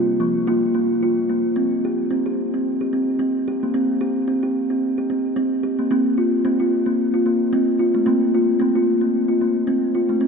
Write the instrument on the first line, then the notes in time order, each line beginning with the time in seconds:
kalimba
Already playing: F4
0.20 F3 A#3
0.47 A#3 F4
0.74 A#3
1.03 F4
1.29 A#3
1.56 C4
1.85 G4
2.10 C4
2.26 G4
2.54 C4
2.81 G4
2.93 C4
3.19 C4
3.48 G4
3.63 A#3
3.74 C4
4.01 G4
4.28 C4
4.43 G4
4.70 C4
4.98 G4
5.10 C4
5.36 C4
5.63 G4
5.79 A#3
5.91 A#3 C4
6.18 F4
6.45 A#3 C4
6.60 F4
6.86 A#3
7.14 F4
7.26 A#3
7.53 C4
7.79 F4
7.95 A3
8.06 A#3 C4
8.35 F4
8.60 A#3 C4
8.75 F4
9.01 A#3
9.28 F4
9.41 A#3
9.67 C4
9.95 F4
10.09 A3
10.21 C4